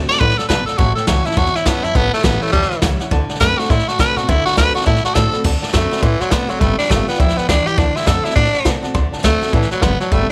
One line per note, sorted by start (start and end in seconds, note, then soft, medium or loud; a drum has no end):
0.08 0.21 C4 medium
0.08 0.20 F#4 medium
0.08 0.16 D5 medium
0.08 0.21 D5 loud
0.08 0.16 F#5 medium
0.08 0.16 A5 medium
0.08 muted upright bass stroke medium
0.08 snare soft
0.15 snare soft
0.20 0.49 F#2 medium
0.20 0.35 A2 loud
0.20 0.39 B4 loud
0.20 0.32 D5 loud
0.20 0.32 F#5 loud
0.20 0.32 C6 loud
0.20 kick loud
0.20 snare soft
0.30 snare soft
0.38 0.48 A4 loud
0.38 0.46 D5 medium
0.38 0.46 F#5 medium
0.38 0.46 A5 medium
0.38 muted upright bass stroke medium
0.38 snare soft
0.49 0.64 B1 medium
0.49 0.78 B2 medium
0.49 0.65 B4 medium
0.49 0.61 D5 loud
0.49 0.61 F#5 medium
0.49 0.61 A5 loud
0.49 kick medium
0.49 snare loud
0.49 hi-hat pedal loud
0.66 0.79 A4 medium
0.66 0.75 D5 medium
0.66 0.75 F#5 medium
0.66 0.75 A5 medium
0.66 muted upright bass stroke medium
0.66 snare soft
0.78 0.93 A1 loud
0.78 1.35 A2 loud
0.78 0.95 F#4 loud
0.78 0.90 C#5 loud
0.78 0.90 E5 medium
0.78 0.90 A5 loud
0.78 kick loud
0.78 snare soft
0.95 1.07 A4 medium
0.95 1.04 C#5 medium
0.95 1.04 E5 medium
0.95 1.04 G5 medium
0.95 muted upright bass stroke medium
0.95 snare soft
1.07 1.22 C#2 loud
1.07 1.25 E3 medium
1.07 1.25 G3 loud
1.07 1.26 C#4 medium
1.07 1.24 E4 loud
1.07 1.27 F#4 medium
1.07 1.19 C#5 medium
1.07 1.19 E5 medium
1.07 1.19 A5 medium
1.07 kick medium
1.07 snare loud
1.07 hi-hat pedal medium
1.25 1.37 C#4 medium
1.25 1.37 E4 medium
1.25 1.39 E4 loud
1.25 1.33 C#5 medium
1.25 1.33 E5 medium
1.25 1.33 A5 medium
1.25 muted upright bass stroke medium
1.25 snare soft
1.31 snare soft
1.37 1.93 E2 medium
1.37 1.52 E2 loud
1.37 1.57 F#4 loud
1.37 1.48 C#5 loud
1.37 1.48 E5 medium
1.37 1.48 A5 loud
1.37 kick loud
1.37 snare soft
1.46 snare soft
1.55 1.68 E4 loud
1.55 1.62 C#5 medium
1.55 1.62 F#5 medium
1.55 muted upright bass stroke medium
1.55 snare soft
1.66 1.81 G2 medium
1.66 1.83 E3 medium
1.66 1.84 G3 loud
1.66 1.86 B3 loud
1.66 1.84 C#4 loud
1.66 1.83 E4 loud
1.66 1.77 C#5 loud
1.66 1.77 E5 medium
1.66 1.77 A5 loud
1.66 kick medium
1.66 snare loud
1.66 hi-hat pedal medium
1.84 1.93 F#2 loud
1.84 1.96 C#4 soft
1.84 1.98 E4 loud
1.84 1.95 E4 medium
1.84 1.91 C#5 medium
1.84 1.91 E5 medium
1.84 1.91 A5 medium
1.84 snare soft
1.95 2.10 A1 loud
1.95 2.52 A2 loud
1.95 2.13 B3 loud
1.95 2.06 C#5 loud
1.95 2.06 E5 medium
1.95 2.06 A5 loud
1.95 kick loud
1.95 snare soft
2.13 2.26 A3 loud
2.13 2.20 C#5 medium
2.13 2.20 E5 medium
2.13 2.20 A5 medium
2.13 muted upright bass stroke medium
2.13 snare soft
2.19 snare soft
2.23 2.39 A1 loud
2.23 2.52 E3 medium
2.23 2.52 G3 medium
2.23 2.43 B3 loud
2.23 2.53 C#4 loud
2.23 2.53 E4 loud
2.23 2.35 C#5 medium
2.23 2.35 E5 medium
2.23 2.36 A5 medium
2.23 kick loud
2.23 snare loud
2.23 hi-hat pedal medium
2.41 2.52 A3 loud
2.41 2.49 C#5 medium
2.41 2.49 E5 medium
2.41 2.49 B5 medium
2.41 muted upright bass stroke medium
2.41 snare soft
2.47 snare soft
2.52 2.68 E2 loud
2.52 3.10 E2 medium
2.52 2.81 G3 loud
2.52 2.65 C#5 medium
2.52 2.64 E5 medium
2.52 2.65 A5 loud
2.52 kick loud
2.52 snare soft
2.62 snare soft
2.71 2.78 C#5 medium
2.71 2.78 E5 medium
2.71 2.79 B5 medium
2.71 muted upright bass stroke medium
2.71 snare soft
2.82 2.97 C#2 medium
2.82 3.00 E3 medium
2.82 3.00 G3 loud
2.82 3.00 C#4 loud
2.82 2.98 E4 loud
2.82 2.93 C#5 loud
2.82 2.93 E5 medium
2.82 2.93 F#5 loud
2.82 kick loud
2.82 snare loud
2.82 hi-hat pedal loud
3.00 3.12 C#4 medium
3.00 3.11 E4 medium
3.00 3.07 C#5 medium
3.00 3.07 E5 medium
3.00 3.08 F#5 loud
3.00 muted upright bass stroke medium
3.00 snare soft
3.11 3.26 D2 loud
3.11 3.39 D3 loud
3.11 3.23 D5 loud
3.11 3.23 F#5 loud
3.11 3.23 A5 loud
3.11 kick loud
3.11 snare soft
3.29 3.37 D5 medium
3.29 3.37 F#5 medium
3.29 3.37 A5 loud
3.29 muted upright bass stroke medium
3.29 snare soft
3.35 snare soft
3.40 3.55 F#2 medium
3.40 3.69 D3 loud
3.40 3.69 A3 loud
3.40 3.69 C4 loud
3.40 3.70 F#4 loud
3.40 3.60 B4 loud
3.40 3.52 D5 medium
3.40 kick medium
3.40 snare loud
3.40 hi-hat pedal loud
3.58 3.71 F#4 loud
3.58 3.66 D5 medium
3.58 3.66 F#5 medium
3.58 3.66 A5 medium
3.58 muted upright bass stroke medium
3.58 snare soft
3.65 snare soft
3.70 3.84 A2 loud
3.70 4.27 A2 medium
3.70 3.89 E4 loud
3.70 3.81 D5 medium
3.70 3.81 F#5 medium
3.70 3.81 C6 loud
3.70 kick loud
3.70 snare soft
3.79 snare soft
3.88 3.99 F#4 loud
3.88 3.95 D5 medium
3.88 3.95 F#5 medium
3.88 3.95 A5 medium
3.88 muted upright bass stroke medium
3.88 snare soft
3.99 4.14 C3 medium
3.99 4.16 D3 medium
3.99 4.17 A3 medium
3.99 4.17 C4 medium
3.99 4.16 F#4 loud
3.99 4.19 B4 loud
3.99 4.10 D5 loud
3.99 4.10 F#5 medium
3.99 4.10 A5 loud
3.99 kick loud
3.99 snare loud
3.99 hi-hat pedal medium
4.16 4.26 B2 loud
4.16 4.29 C4 medium
4.16 4.28 F#4 medium
4.16 4.30 F#4 loud
4.16 4.24 D5 medium
4.16 4.24 F#5 medium
4.16 4.24 A5 medium
4.16 snare soft
4.28 4.43 D2 loud
4.28 4.56 D3 loud
4.28 4.45 E4 loud
4.28 4.39 D5 loud
4.28 4.39 F#5 loud
4.28 4.40 C6 loud
4.28 kick loud
4.28 snare soft
4.45 4.57 F#4 loud
4.45 4.53 D5 medium
4.45 4.53 F#5 medium
4.45 4.53 B5 medium
4.45 muted upright bass stroke medium
4.45 snare soft
4.52 snare soft
4.57 4.72 D2 loud
4.57 4.75 D3 loud
4.57 4.75 A3 medium
4.57 4.75 C4 loud
4.57 4.73 F#4 loud
4.57 4.75 B4 loud
4.57 4.68 D5 medium
4.57 4.68 F#5 medium
4.57 4.68 A5 medium
4.57 kick medium
4.57 snare loud
4.57 hi-hat pedal loud
4.74 4.87 C4 soft
4.74 4.86 F#4 medium
4.74 4.86 F#4 loud
4.74 4.81 D5 medium
4.74 4.82 F#5 medium
4.74 4.82 A5 medium
4.74 muted upright bass stroke medium
4.74 snare soft
4.81 4.97 D5 loud
4.81 snare soft
4.86 5.42 A2 medium
4.86 5.01 A2 loud
4.86 5.04 E4 loud
4.86 4.97 F#5 medium
4.86 4.97 A5 loud
4.86 kick loud
4.86 snare soft
4.96 snare soft
5.04 5.16 F#4 loud
5.04 5.11 D5 medium
5.04 5.12 F#5 medium
5.04 5.12 A5 medium
5.04 muted upright bass stroke medium
5.04 snare soft
5.15 5.30 A2 medium
5.15 5.33 D3 medium
5.15 5.33 A3 medium
5.15 5.33 C4 medium
5.15 5.31 F#4 loud
5.15 5.44 A4 loud
5.15 5.27 D5 loud
5.15 5.27 F#5 loud
5.15 5.27 A5 loud
5.15 kick loud
5.15 snare loud
5.15 hi-hat pedal loud
5.32 5.45 C4 medium
5.32 5.44 F#4 medium
5.32 5.40 D5 medium
5.32 5.40 F#5 medium
5.32 5.41 B5 medium
5.32 muted upright bass stroke medium
5.32 snare soft
5.44 5.59 D2 medium
5.44 5.72 D3 medium
5.44 5.56 D5 medium
5.44 5.56 F#5 medium
5.44 5.55 A5 loud
5.44 kick loud
5.44 snare soft
5.44 crash loud
5.62 5.69 D5 medium
5.62 5.69 F#5 medium
5.62 5.69 A5 loud
5.62 muted upright bass stroke medium
5.62 snare soft
5.68 snare soft
5.73 5.88 F#2 medium
5.73 5.91 D3 medium
5.73 6.04 A3 medium
5.73 5.91 A3 medium
5.73 5.91 C4 medium
5.73 5.90 F#4 loud
5.73 5.84 D5 medium
5.73 5.85 F#5 medium
5.73 5.85 B5 medium
5.73 kick medium
5.73 snare loud
5.73 hi-hat pedal loud
5.91 6.03 C4 soft
5.91 6.02 F#4 medium
5.91 5.98 D5 medium
5.91 5.98 F#5 medium
5.91 5.99 B5 medium
5.91 muted upright bass stroke medium
5.91 snare soft
5.97 snare soft
6.02 6.17 A2 loud
6.02 6.59 A2 loud
6.02 6.22 E3 medium
6.02 6.13 D5 loud
6.02 6.14 F#5 medium
6.02 6.14 C6 loud
6.02 kick loud
6.02 snare soft
6.20 6.33 F#3 medium
6.20 6.28 D5 medium
6.20 6.28 F#5 medium
6.20 6.28 C6 medium
6.20 muted upright bass stroke medium
6.20 snare soft
6.31 6.46 C3 medium
6.31 6.49 D3 medium
6.31 6.49 A3 medium
6.31 6.51 B3 medium
6.31 6.50 C4 medium
6.31 6.48 F#4 medium
6.31 6.43 D5 loud
6.31 6.43 F#5 medium
6.31 6.43 C6 loud
6.31 kick medium
6.31 snare loud
6.31 hi-hat pedal medium
6.49 6.59 A1 loud
6.49 6.62 F#3 medium
6.49 6.62 C4 soft
6.49 6.60 F#4 medium
6.49 6.56 D5 medium
6.49 6.56 F#5 medium
6.49 6.57 C6 medium
6.49 snare soft
6.60 6.76 G1 loud
6.60 6.88 G3 loud
6.60 6.78 A3 loud
6.60 6.72 D5 medium
6.60 6.72 G5 medium
6.60 6.72 B5 loud
6.60 kick loud
6.60 snare soft
6.78 6.92 D4 loud
6.78 6.85 D5 medium
6.78 6.86 G5 medium
6.78 6.86 B5 medium
6.78 muted upright bass stroke medium
6.78 snare soft
6.85 snare soft
6.90 7.05 G1 loud
6.90 7.07 G3 medium
6.90 7.08 A3 medium
6.90 7.08 B3 loud
6.90 7.07 F4 loud
6.90 7.01 D5 medium
6.90 7.01 G5 medium
6.90 7.01 D6 medium
6.90 kick medium
6.90 snare loud
6.90 hi-hat pedal loud
7.07 7.22 B3 medium
7.07 7.20 B3 soft
7.07 7.19 F4 medium
7.07 7.15 D5 medium
7.07 7.15 G5 medium
7.07 7.15 B5 medium
7.07 muted upright bass stroke medium
7.07 snare soft
7.15 7.30 D5 loud
7.15 7.30 G5 medium
7.15 7.30 B5 loud
7.15 snare soft
7.19 7.34 D2 loud
7.19 7.48 F3 medium
7.19 7.39 E4 loud
7.19 kick loud
7.19 snare soft
7.29 snare soft
7.36 7.48 B3 medium
7.36 7.44 D5 medium
7.36 7.44 G5 medium
7.36 7.44 B5 medium
7.36 muted upright bass stroke medium
7.36 snare soft
7.48 7.63 D2 loud
7.48 7.77 E3 medium
7.48 7.68 D4 loud
7.48 7.59 D5 loud
7.48 7.59 G5 medium
7.48 7.59 B5 loud
7.48 kick loud
7.48 snare loud
7.48 hi-hat pedal loud
7.66 7.80 G4 loud
7.66 7.73 D5 medium
7.66 7.74 G5 medium
7.66 7.74 D6 medium
7.66 muted upright bass stroke medium
7.66 snare soft
7.77 7.93 D2 loud
7.77 8.05 D3 loud
7.77 7.97 D4 medium
7.77 7.88 D5 loud
7.77 7.88 F#5 medium
7.77 7.89 A5 loud
7.77 kick loud
7.77 snare soft
7.95 8.09 E4 medium
7.95 8.02 D5 medium
7.95 8.03 F#5 medium
7.95 8.03 C6 medium
7.95 muted upright bass stroke medium
7.95 snare soft
8.02 snare soft
8.06 8.21 F#2 medium
8.06 8.24 D3 medium
8.06 8.25 A3 medium
8.06 8.25 C4 medium
8.06 8.24 F#4 loud
8.06 8.26 A4 medium
8.06 8.18 D5 medium
8.06 8.18 F#5 medium
8.06 8.18 A5 medium
8.06 kick medium
8.06 snare loud
8.06 hi-hat pedal medium
8.24 8.37 C4 soft
8.24 8.35 E4 medium
8.24 8.36 F#4 medium
8.24 8.31 D5 medium
8.24 8.31 F#5 medium
8.24 8.32 A5 medium
8.24 muted upright bass stroke medium
8.24 snare soft
8.30 snare soft
8.35 8.50 A2 loud
8.35 8.93 A2 medium
8.35 8.78 D4 loud
8.35 8.47 D5 medium
8.35 8.47 F#5 medium
8.35 8.47 A5 loud
8.35 kick loud
8.35 snare soft
8.45 snare soft
8.53 8.61 D5 medium
8.53 8.61 F#5 medium
8.53 8.61 A5 medium
8.53 muted upright bass stroke medium
8.53 snare soft
8.65 8.80 C3 medium
8.65 8.82 D3 medium
8.65 8.83 A3 medium
8.65 8.83 C4 medium
8.65 8.81 F#4 loud
8.65 8.76 D5 loud
8.65 8.76 F#5 loud
8.65 8.76 A5 loud
8.65 kick medium
8.65 snare loud
8.65 hi-hat pedal loud
8.83 8.92 B2 loud
8.83 8.95 C4 soft
8.83 8.94 F#4 medium
8.83 8.90 D5 medium
8.83 8.90 F#5 medium
8.83 8.90 A5 loud
8.83 snare soft
8.94 9.09 D2 loud
8.94 9.22 D3 loud
8.94 9.05 D5 loud
8.94 9.05 F#5 medium
8.94 9.05 C6 loud
8.94 kick loud
8.94 snare soft
9.12 9.19 D5 medium
9.12 9.19 F#5 medium
9.12 9.19 A5 loud
9.12 muted upright bass stroke medium
9.12 snare soft
9.19 snare soft
9.23 9.38 D2 medium
9.23 9.41 D3 medium
9.23 9.41 A3 medium
9.23 9.55 A3 loud
9.23 9.42 C4 loud
9.23 9.41 F#4 loud
9.23 9.34 D5 medium
9.23 9.35 B5 medium
9.23 kick medium
9.23 snare loud
9.23 hi-hat pedal medium
9.42 9.54 C4 soft
9.42 9.53 F#4 medium
9.42 9.49 D5 medium
9.42 9.49 F#5 medium
9.42 9.49 A5 medium
9.42 muted upright bass stroke medium
9.42 snare soft
9.47 snare soft
9.53 9.67 A2 medium
9.53 9.81 E3 medium
9.53 9.71 E3 loud
9.53 9.64 D5 loud
9.53 9.64 F#5 medium
9.53 9.65 A5 loud
9.53 kick loud
9.53 snare soft
9.62 snare soft
9.71 9.84 F#3 medium
9.71 9.78 D5 medium
9.71 9.79 F#5 medium
9.71 9.79 B5 medium
9.71 muted upright bass stroke medium
9.71 snare soft
9.82 9.97 F#1 loud
9.82 10.10 F#3 medium
9.82 10.00 B3 medium
9.82 9.93 D5 loud
9.82 9.93 F#5 medium
9.82 9.93 C6 loud
9.82 kick loud
9.82 snare loud
9.82 hi-hat pedal loud
10.00 10.14 F#3 medium
10.00 10.07 D5 medium
10.00 10.07 F#5 medium
10.00 10.07 A5 medium
10.00 muted upright bass stroke medium
10.00 snare soft
10.11 10.26 G1 loud
10.11 10.32 G3 loud
10.11 10.29 A3 medium
10.11 10.22 D5 medium
10.11 10.22 G5 medium
10.11 10.22 B5 loud
10.11 kick loud
10.11 snare soft